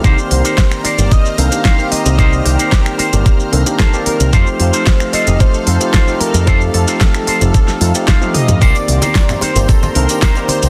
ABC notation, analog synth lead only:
X:1
M:4/4
L:1/8
Q:1/4=112
K:Cdor
V:1 name="Analog synth lead"
c3 d e f2 e- | e G4 z A B | c3 e c3 B | A A A4 f e |
d3 c A B B c |]